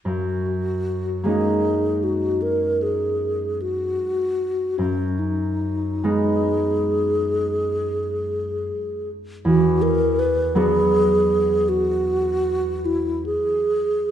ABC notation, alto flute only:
X:1
M:12/8
L:1/8
Q:3/8=52
K:F#mix
V:1 name="Alto flute"
F3 G2 F A G2 F3 | C D2 G8 z | F A B G3 F3 E G2 |]